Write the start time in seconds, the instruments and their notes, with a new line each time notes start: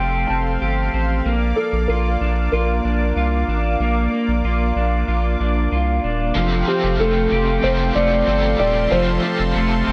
Already playing: sub bass F1, clean electric guitar F3 A3 C4, analog synth pad A4 F5 G5 C6, felt piano G5
0.00 clean electric guitar G4
0.27 sub bass F1, clean electric guitar C4, felt piano A5
0.61 sub bass G1, clean electric guitar G4
0.94 sub bass A1, clean electric guitar C4
1.25 sub bass A#1, clean electric guitar A#3, analog synth pad A#3 D5 D6
1.56 clean electric guitar A#3, felt piano A4
1.73 sub bass A#1
1.88 sub bass A#1, clean electric guitar F4, felt piano A#4
2.21 sub bass A#1, clean electric guitar D4
2.52 sub bass A#1, clean electric guitar F4, felt piano A#4
2.84 sub bass A#1, clean electric guitar D4
3.16 sub bass C2, clean electric guitar F4
3.48 sub bass A1, clean electric guitar D4
3.80 sub bass A#1, clean electric guitar A#3
4.13 clean electric guitar A#3
4.28 sub bass A#1
4.44 sub bass A#1, clean electric guitar F4
4.76 sub bass A#1, clean electric guitar D4
5.08 sub bass A#1, clean electric guitar F4
5.40 sub bass A#1, clean electric guitar D4
5.72 sub bass C2, clean electric guitar F4
6.04 sub bass D#1, clean electric guitar D4
6.35 sub bass F1, overdriven electric guitar F3 A3 C4 G4, clean electric guitar F3, analog synth pad A4 F5 G5 C6
6.66 clean electric guitar C4, overdriven electric guitar C4 G4, felt piano G4
6.72 overdriven electric guitar A3
6.83 sub bass F1
6.99 sub bass F1, clean electric guitar A3, felt piano A4
7.31 sub bass F1, clean electric guitar G4
7.62 sub bass F1, overdriven electric guitar F3 A3 C4, clean electric guitar C4, felt piano C5
7.68 overdriven electric guitar G4
7.95 sub bass F1, clean electric guitar A3, felt piano D5
8.26 sub bass G1, overdriven electric guitar F3 A3 C4, clean electric guitar C4
8.32 overdriven electric guitar G4
8.59 sub bass D#1, clean electric guitar G4, felt piano D5
8.91 sub bass F1, overdriven electric guitar F3 A3 C4 G4, clean electric guitar F3, felt piano C5, analog synth pad A5
9.22 clean electric guitar C4, overdriven electric guitar C4 G4
9.27 overdriven electric guitar A3
9.39 sub bass F1
9.55 sub bass F1, clean electric guitar A3
9.87 sub bass F1, clean electric guitar G4